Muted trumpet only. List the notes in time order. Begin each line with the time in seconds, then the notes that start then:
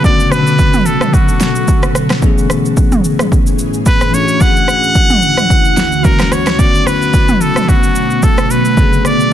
0.05 D5
0.32 B4
0.86 A4
1.14 F#4
3.87 B4
4.14 C#5
4.41 F#5
6.05 A#4
6.33 C#5
6.59 D5
6.87 B4
7.41 A4
7.69 F#4
8.24 A4
8.51 B4
9.06 D5